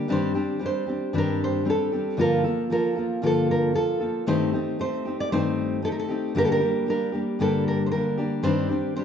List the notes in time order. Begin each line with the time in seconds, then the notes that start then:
Already playing: A#4
0.08 G2 D#3 G3 C4 D4 G4
0.12 C5
0.34 G3 C4 D4 G4
0.59 G3 C4 D4 G4
0.66 C5
0.87 G3 C4 D4 G4
1.13 G2 D#3 G3 C4 D4 G4
1.18 A#4
1.44 C5
1.65 G3 C4 D4 G4
1.70 A4
1.92 G3 C4 D4 G4
2.17 G2 D3 F3 A#3 F4 A4
2.21 A#4
2.44 F3 A#3 F4 A4
2.70 F3 A#3 F4 A4 A#4
2.96 F3 A#3 F4 A4
3.22 G2 D3 F3 A#3 F4 A4
3.26 A4
3.51 A#4
3.74 F3 A#3 F4 A4
4.00 F3 A#3 F4 A4
4.27 G2 D#3 A3 C4 D#4 G4 C5
4.53 A3 C4 D#4 G4
4.79 A3 C4 D#4 G4 C5
5.05 A3 C4 D#4 G4
5.20 D5
5.32 G2 D#3 A3 C4 D#4 G4 C5
5.82 A3 C4 D#4 G4 A4
5.92 A#4
5.99 A4
6.08 A3 C4 D#4 G4
6.35 G2 D3 G3 A#3 D4 G4 A#4
6.45 A4
6.52 A#4
6.60 G3 A#3 D4 G4
6.87 G3 A#3 D4 G4 A#4
7.12 G3 A#3 D4 G4
7.39 G2 D3 G3 A#3 D4 G4 A4
7.68 A#4
7.86 C5
7.92 G3 A#3 D4 G4 A#4
8.18 G3 A#3 D4 G4
8.43 G2 D#3 G3 C4 D4 G4 C5
8.69 G3 C4 D4 G4
8.96 G3 C4 D4 G4 C5